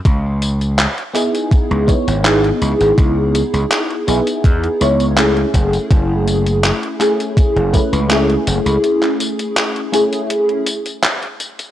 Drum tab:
HH |x-xxxxxxxxxxxxxx|x-xxxxxxxxxxxxxx|x-xxxxxxxxxxxxxx|xxxxxxxxxxxxxxxx|
TB |x-xxx-xxx-xxx-xx|x-xxx-xxx-xxx-xx|x-xxx-xxx-xxx-xx|x-xxx-xxx-xxx-xx|
CP |----x-x-----x---|----x-------x---|----x-x-----x---|-x--x-------x---|
BD |o-------o-o-----|o-------o-----o-|o-------o-o-----|----------------|